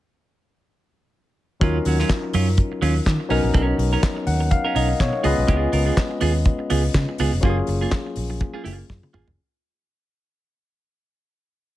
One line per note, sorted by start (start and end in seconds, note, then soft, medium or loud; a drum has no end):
1.60 1.78 D#2 loud
1.60 3.27 F#3 medium
1.60 1.77 F#3 medium
1.60 3.27 C#4 medium
1.60 1.77 C#4 medium
1.60 3.27 D#4 medium
1.60 3.28 F4 medium
1.60 1.78 F4 medium
1.60 3.28 A#4 medium
1.60 kick loud
1.60 closed hi-hat medium
1.85 2.02 D#2 medium
1.85 1.98 F#3 medium
1.85 1.99 C#4 medium
1.85 1.99 F#4 medium
1.85 open hi-hat medium
1.99 2.09 F#3 medium
1.99 2.10 C#4 medium
1.99 2.09 F4 medium
1.99 snare soft
2.10 muted clean electric guitar stroke soft
2.10 kick medium
2.10 snare loud
2.10 clap medium
2.24 muted clean electric guitar stroke soft
2.33 2.60 F#2 medium
2.33 2.49 F#3 medium
2.33 2.49 C#4 medium
2.33 2.47 F4 medium
2.33 open hi-hat medium
2.49 muted clean electric guitar stroke soft
2.57 kick medium
2.57 closed hi-hat medium
2.72 muted clean electric guitar stroke soft
2.82 2.98 D#2 medium
2.82 2.97 F#3 medium
2.82 2.95 C#4 medium
2.82 2.94 F4 medium
2.82 open hi-hat medium
2.96 muted clean electric guitar stroke soft
3.06 3.16 D#3 loud
3.06 kick medium
3.06 snare loud
3.06 clap medium
3.06 closed hi-hat medium
3.20 muted clean electric guitar stroke medium
3.28 3.40 B1 loud
3.28 5.20 F#3 medium
3.28 5.20 B3 medium
3.28 3.46 C#4 medium
3.28 5.21 C#4 medium
3.28 3.43 D#4 medium
3.28 5.21 D#4 medium
3.28 5.21 A#4 medium
3.28 3.43 A#4 medium
3.28 open hi-hat medium
3.44 3.51 A#1 medium
3.44 muted clean electric guitar stroke soft
3.54 3.71 B1 loud
3.54 3.75 C#4 medium
3.54 3.67 D#4 medium
3.54 3.66 A#4 medium
3.54 kick loud
3.54 closed hi-hat medium
3.67 muted clean electric guitar stroke soft
3.78 3.95 B1 loud
3.78 muted clean electric guitar stroke soft
3.78 open hi-hat medium
3.93 4.01 C#4 soft
3.93 4.02 D#4 medium
3.93 4.02 A#4 medium
4.03 muted clean electric guitar stroke soft
4.03 kick loud
4.03 snare loud
4.03 clap medium
4.03 closed hi-hat medium
4.17 muted clean electric guitar stroke soft
4.27 4.53 D#2 medium
4.27 4.50 F#5 medium
4.27 open hi-hat medium
4.41 muted clean electric guitar stroke soft
4.51 4.74 F5 medium
4.51 muted clean electric guitar stroke soft
4.51 kick medium
4.51 closed hi-hat medium
4.65 4.74 C#4 soft
4.65 4.75 D#4 soft
4.65 4.75 A#4 medium
4.75 4.92 B1 medium
4.75 4.91 C#4 medium
4.75 4.88 D#4 medium
4.75 4.88 A#4 medium
4.75 4.99 D#5 medium
4.75 open hi-hat medium
4.89 muted clean electric guitar stroke medium
5.00 5.10 B2 medium
5.00 5.23 C#5 medium
5.00 kick loud
5.00 snare loud
5.00 clap medium
5.13 muted clean electric guitar stroke soft
5.23 5.34 C#2 medium
5.23 7.15 G#3 medium
5.23 5.40 B3 medium
5.23 7.15 B3 medium
5.23 7.15 C#4 medium
5.23 5.37 F4 medium
5.23 7.16 F4 medium
5.23 5.36 G#4 medium
5.23 7.16 B4 medium
5.23 5.47 D#5 medium
5.23 open hi-hat medium
5.37 5.45 B1 medium
5.37 muted clean electric guitar stroke soft
5.47 5.65 C#2 loud
5.47 5.69 B3 medium
5.47 5.69 F4 medium
5.47 5.69 G#4 medium
5.47 kick loud
5.47 closed hi-hat medium
5.72 5.90 C#2 loud
5.72 5.85 B3 medium
5.72 5.85 F4 medium
5.72 5.85 A#4 medium
5.72 open hi-hat medium
5.85 5.96 B3 medium
5.85 5.96 F4 medium
5.85 5.96 G#4 medium
5.97 kick medium
5.97 snare loud
5.97 clap medium
6.11 muted clean electric guitar stroke soft
6.21 6.48 D#2 medium
6.21 6.37 B3 medium
6.21 6.33 F4 loud
6.21 6.33 G#4 loud
6.21 open hi-hat medium
6.34 muted clean electric guitar stroke soft
6.45 kick loud
6.45 closed hi-hat medium
6.59 muted clean electric guitar stroke soft
6.70 6.87 C#2 medium
6.70 6.86 B3 medium
6.70 6.84 F4 medium
6.70 6.83 G#4 medium
6.70 open hi-hat medium
6.84 muted clean electric guitar stroke soft
6.94 7.04 C#3 loud
6.94 kick loud
6.94 snare loud
6.94 clap medium
6.94 closed hi-hat medium
7.09 muted clean electric guitar stroke medium
7.18 7.29 C#2 medium
7.18 7.35 B3 medium
7.18 7.32 F4 medium
7.18 7.32 G#4 medium
7.18 open hi-hat medium
7.33 7.40 F1 medium
7.33 muted clean electric guitar stroke soft
7.41 7.60 F#1 loud
7.41 9.33 F#3 medium
7.41 9.33 A#3 medium
7.41 7.59 A#3 medium
7.41 9.34 C#4 medium
7.41 9.34 F4 medium
7.41 7.50 G4 medium
7.41 kick loud
7.41 closed hi-hat medium
7.45 7.58 F4 medium
7.45 7.57 G#4 loud
7.49 9.37 G#4 medium
7.58 muted clean electric guitar stroke soft
7.67 7.85 F#1 medium
7.67 muted clean electric guitar stroke soft
7.67 open hi-hat medium
7.81 7.91 A#3 soft
7.81 7.91 F4 medium
7.81 7.91 G#4 medium
7.91 kick loud
7.91 snare loud
7.91 clap medium
7.91 closed hi-hat medium
8.06 muted clean electric guitar stroke soft
8.16 8.43 A#1 loud
8.16 open hi-hat medium
8.30 muted clean electric guitar stroke soft
8.40 muted clean electric guitar stroke soft
8.40 kick loud
8.40 closed hi-hat medium
8.54 8.63 A#3 soft
8.54 8.63 F4 soft
8.54 8.64 G#4 medium
8.64 8.82 F#1 medium
8.64 8.85 A#3 medium
8.64 8.79 F4 medium
8.64 8.77 G#4 medium
8.64 open hi-hat medium
8.79 muted clean electric guitar stroke soft
8.90 8.99 F#2 loud
8.90 kick loud
8.90 snare soft
9.03 muted clean electric guitar stroke soft
9.03 high tom medium
9.13 9.23 G#1 medium
9.13 9.29 A#3 medium
9.13 9.28 F4 medium
9.13 9.27 G#4 medium
9.13 mid tom medium
9.28 9.35 F1 medium
9.28 muted clean electric guitar stroke soft
9.28 floor tom medium